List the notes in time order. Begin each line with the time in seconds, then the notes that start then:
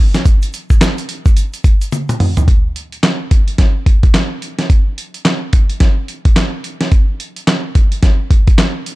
0.14 snare, closed hi-hat, shaker
0.25 kick, closed hi-hat, shaker
0.42 closed hi-hat, shaker
0.53 closed hi-hat, shaker
0.70 kick, closed hi-hat, shaker
0.81 snare, clap, closed hi-hat, shaker
0.98 closed hi-hat, shaker
1.09 closed hi-hat
1.26 kick, closed hi-hat, shaker
1.37 closed hi-hat, shaker
1.54 closed hi-hat, shaker
1.64 kick, closed hi-hat, shaker
1.81 closed hi-hat, shaker
1.92 closed hi-hat, high tom, shaker
2.09 closed hi-hat, mid tom, shaker
2.20 mid tom, open hi-hat
2.37 closed hi-hat, floor tom, shaker
2.48 kick, closed hi-hat
2.76 closed hi-hat
2.92 closed hi-hat
3.03 snare, clap, closed hi-hat
3.31 kick, closed hi-hat
3.48 closed hi-hat
3.58 kick, snare, closed hi-hat
3.86 kick, closed hi-hat
4.03 kick, closed hi-hat
4.14 snare, clap, closed hi-hat
4.42 closed hi-hat
4.59 snare, closed hi-hat
4.70 kick, closed hi-hat
4.98 closed hi-hat
5.14 closed hi-hat
5.25 snare, clap, closed hi-hat
5.53 kick, closed hi-hat
5.70 closed hi-hat
5.80 kick, snare, closed hi-hat
6.08 closed hi-hat
6.25 kick, closed hi-hat
6.36 snare, clap, closed hi-hat
6.64 closed hi-hat
6.81 snare, closed hi-hat
6.92 kick, closed hi-hat
7.20 closed hi-hat
7.36 closed hi-hat
7.47 snare, clap, closed hi-hat
7.75 kick, closed hi-hat
7.92 closed hi-hat
8.03 kick, snare, closed hi-hat
8.31 kick, closed hi-hat
8.47 kick, closed hi-hat
8.58 snare, clap, closed hi-hat
8.86 closed hi-hat